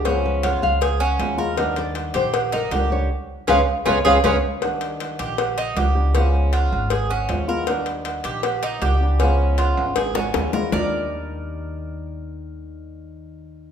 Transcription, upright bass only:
\new Staff \with { instrumentName = "Upright bass" } { \clef bass \time 4/4 \key ees \major \tempo 4 = 157 des,4. des,4. ees,4~ | ees,4. bes,,4. des,4 | r4 des,8 r8 des,8 des,8 des,8 r8 | r4. bes,,4. des,4~ |
des,4. aes,,4. ees,4~ | ees,4. bes,,4. des,4~ | des,4. aes,,4. ees,4 | ees,1~ |
ees,1 | }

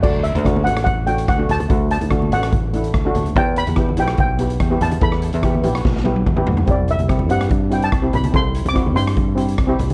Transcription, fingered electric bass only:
\new Staff \with { instrumentName = "Fingered electric bass" } { \clef bass \time 4/4 \key d \mixolydian \tempo 4 = 144 d,8. d,8. a,,8 a,,4 d,8 d,8 | d,8. d,8. a,,8 a,,4 d,8 d,8 | e,8. e,8. b,,8 b,,4 e,8 e,8 | e,8. e,8. b,,8 b,,4 e,8 d,8 |
c,8. c,8. g,8 g,4 c,8 c,8 | c,8. c,8. g,8 g,4 c,8 c,8 | }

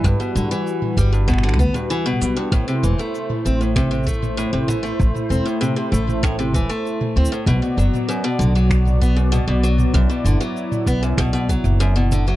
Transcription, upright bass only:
\new Staff \with { instrumentName = "Upright bass" } { \clef bass \time 4/4 \key a \dorian \tempo 4 = 97 g,,16 r16 g,16 r8. g,,4 d,16 r8. b,,16 r16 | a,,16 r16 e,,16 r8. a,,4. r16 a,,8 r16 | a,,16 r16 e,,16 r8. a,,4 e,,16 r8. d,16 r16 | b,,16 r16 fis,,16 r8. b,,4. r16 b,,8 r16 |
b,,16 r16 fis,,16 r8. b,,8 b,,8 r16 fis,,4 r16 | }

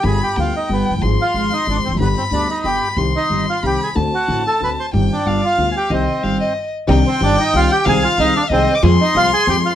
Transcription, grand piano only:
\new Staff \with { instrumentName = "Grand piano" } { \clef bass \time 3/4 \key c \minor \tempo 4 = 185 <g,, g, d g b g'>8 r8 <d, d g b g'>8 r8 <g,, g, d g b g'>8 r32 f,,32 fis,,32 g,,32 | <aes,, aes, f aes c' aes'>8 r8 <aes,, aes, f aes c' aes'>8 r8 <aes,, aes, f aes c' aes'>8 r32 e,32 f,32 fis,32 | <g,, g, d g b g'>8 r8 <d, d g b g'>8 r8 <g,, g, d g b g'>8 r8 | <c, c ees g c' g'>8 r8 <g,, g, ees g c' g'>8 r8 <c, c ees g c' g'>8 r8 |
<d, d a c' fis'>8 r8 <a,, a, d a c' fis'>8 r8 <d, d a c' fis'>8 r8 | <g,, g, ees g c' g'>8 r8 <g,, g, d g b f'>8 r8 <d, d g b f'>8 r8 | <c, c ees g c' g'>8 r8 <g,, g, ees g c' g'>8 r4. | <c, c ees c' d' g'>8 r8 <g,, g, ees c' d' g'>8 r8 <c, c ees c' d' g'>8 r8 |
<c, c ees aes c' aes'>8 r8 <c, c ees aes c' aes'>8 r8 <c, c ees aes c' aes'>8 r8 | <f, f aes c' aes'>8 r8 <c, c f aes c' aes'>8 r8 <f, f aes c' aes'>8 r8 | }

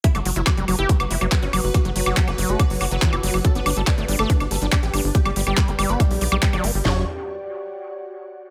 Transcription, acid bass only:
\new Staff \with { instrumentName = "Acid bass" } { \clef bass \time 4/4 \key g \lydian \tempo 4 = 141 fis16 a16 fis16 fis16 r16 g16 fis16 g'16 fis16 r16 fis16 fis16 fis16 fis'16 fis16 r16 | fis16 fis16 fis16 fis8 cis'16 fis16 a16 fis16 r16 fis16 fis16 e16 fis'16 fis16 r16 | g16 b16 g16 g16 r16 a16 g16 a16 g16 r16 g16 g16 g16 g'16 g16 r16 | g16 g16 g16 g8 d'16 g16 b16 g16 r16 g16 g16 g16 fis16 b16 r16 |
fis8 r2. r8 | }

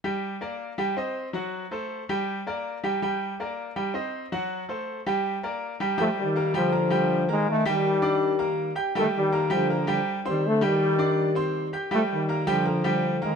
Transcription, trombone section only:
\new Staff \with { instrumentName = "Trombone section" } { \clef bass \time 4/4 \key g \minor \tempo 4 = 162 r1 | r1 | r1 | r1 |
<f a>8 <ees g>4 <d f>2 <ees aes>8 | <ees a>8 <ees g>2. r8 | <ees a>8 <ees g>4 <d f>4. r8 <ees g>8 | <d a>8 <ees g>2. r8 |
<f a>8 <ees g>4 <d f>2 <ees aes>8 | }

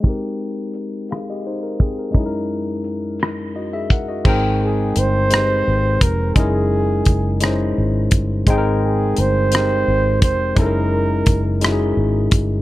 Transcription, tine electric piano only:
\new Staff \with { instrumentName = "Tine electric piano" } { \time 6/8 \key aes \major \tempo 4. = 57 << { r4. <aes' f''>16 <g' ees''>16 <ees' c''>16 bes'16 <c' aes'>16 bes'16~ | bes'16 r4. r16 <ges' ees''>16 <aes' fes''>16 <bes' ges''>16 <ges' ees''>16~ | <ges' ees''>16 r2 r8. | r2. |
r2. | r2. | } \\ { <aes c' ees' g' bes'>2. | <ges, aes des' ees' fes' aes' bes'>2. | <aes c' ees' bes' g''>4 r8 <aes c' ees' g' ces'' c''>4 r8 | <aes des' ees' fes' bes'>4 r8 <aes des' ees' fes' c''>4 r8 |
<aes c' ees' aes' bes' g''>4 r8 <aes c' ees' g' bes'>4 r8 | <aes des' ees' fes' a' bes'>4 r8 <aes des' ees' fes' ges' aes'>4 r8 | } >> }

